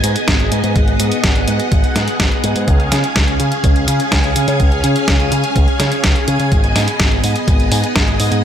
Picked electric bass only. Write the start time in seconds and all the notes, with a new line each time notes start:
0.04 G#2
0.28 G#1
0.52 G#2
0.64 G#2
0.76 G#1
1.00 G#2
1.24 G#1
1.48 G#2
1.72 G#1
1.96 G#2
2.20 G#1
2.44 G#2
2.56 G#2
2.68 C#2
2.92 C#3
3.16 C#2
3.40 C#3
3.64 C#2
3.88 C#3
4.12 C#2
4.36 C#3
4.48 C#3
4.60 C#2
4.84 C#3
5.08 C#2
5.32 C#3
5.56 C#2
5.80 C#3
6.04 C#2
6.28 C#3
6.40 C#3
6.52 G#1
6.76 G#2
7.00 G#1
7.24 G#2
7.48 G#1
7.72 G#2
7.96 G#1
8.20 G#2
8.32 G#2